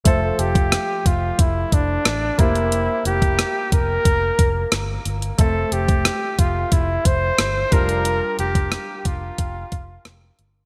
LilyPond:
<<
  \new Staff \with { instrumentName = "Flugelhorn" } { \time 4/4 \key f \major \tempo 4 = 90 a'8 g'4 f'8 e'8 d'4 e'8~ | e'8 g'4 bes'2 r8 | a'8 g'4 f'8 e'8 c''4 bes'8~ | bes'8 g'4 f'2 r8 | }
  \new Staff \with { instrumentName = "Grand piano" } { \time 4/4 \key f \major <f a c'' e''>2.~ <f a c'' e''>8 <bes e' g' c''>8~ | <bes e' g' c''>2.~ <bes e' g' c''>8 r8 | <a c' c'' e''>2.~ <a c' c'' e''>8 <g d' f' bes'>8~ | <g d' f' bes'>2.~ <g d' f' bes'>8 r8 | }
  \new Staff \with { instrumentName = "Fingered electric bass" } { \clef bass \time 4/4 \key f \major f,,8 f,,8. r16 f,,8 f,,8 f,,8 a,,8 f,,8~ | f,,8 f,,8. r16 f,,8 f,,8 f,,8 g,,8 g,,8 | f,,8 f,,8. r16 f,,8 f,,8 f,,8 g,,8 f,,8~ | f,,8 f,,8. r16 f,,8 f,,8 f,,8 f,,8 g,,8 | }
  \new DrumStaff \with { instrumentName = "Drums" } \drummode { \time 4/4 <hh bd>8 hh16 <hh bd>16 <hh ss>8 <hh bd>8 <hh bd>8 <hh bd>8 <hh ss>8 <hh bd>16 hh16 | hh8 hh16 <hh bd>16 <hh ss>8 <hh bd>8 <hh bd>8 <hh bd>8 <hh ss>8 hh16 hh16 | <hh bd>8 hh16 <hh bd>16 <hh ss>8 <hh bd>8 <hh bd>8 <hh bd>8 <hh ss>8 <hh bd>16 hh16 | hh8 hh16 <hh bd>16 <hh ss>8 <hh bd>8 <hh bd>8 <hh bd>8 <hh ss>8 hh8 | }
>>